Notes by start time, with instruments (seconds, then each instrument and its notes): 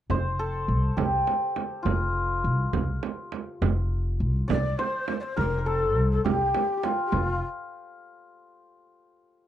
0.10 upright bass F1, santur C5, frame drum
0.39 santur A4
0.68 upright bass C2
0.97 upright bass C2, santur G4, frame drum
1.27 frame drum
1.56 frame drum
1.83 upright bass F1, santur F4, frame drum
2.44 upright bass C2
2.73 upright bass C2, frame drum
3.03 frame drum
3.32 frame drum
3.62 upright bass F1, frame drum
4.20 upright bass C2
4.48 upright bass C2, santur D5, ney D5, frame drum
4.77 ney C5, santur C5, frame drum
5.08 frame drum
5.19 ney C5 D5
5.36 upright bass F1, santur A#4, ney A#4, frame drum
5.59 santur A#4
5.66 ney A4, santur A4
5.96 upright bass C2
6.11 ney A4
6.24 upright bass C2, ney G4, santur G4, frame drum
6.54 frame drum
6.77 santur G4
6.83 ney F4, santur F4, frame drum
7.05 ney G4
7.11 upright bass F1, ney F4, santur F4, frame drum